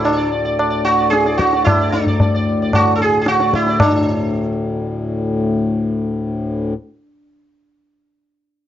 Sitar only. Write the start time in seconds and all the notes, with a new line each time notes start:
Already playing: D5
0.04 D4
0.17 D5
0.32 D5
0.45 D5
0.59 D5
0.70 D5
0.85 F#4
0.98 D5
1.10 G#4
1.26 D5
1.38 F#4
1.54 D5
1.64 E4
1.81 D5
1.92 D4
2.08 D5
2.21 D5
2.35 D5
2.62 D5
2.75 F#4
2.95 A4
3.02 G#4
3.21 G#4
3.28 F#4
3.41 D5
3.55 E4
3.69 D5
3.82 D4